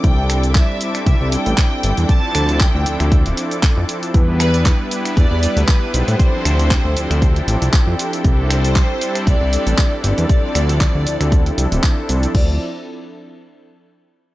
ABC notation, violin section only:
X:1
M:4/4
L:1/8
Q:"Swing 16ths" 1/4=117
K:Ddor
V:1 name="Violin section"
g2 e2 e g3 | a2 g2 z4 | z B2 z d2 B c- | c6- c z |
z c3 d3 d- | d6- d z | d z6 z |]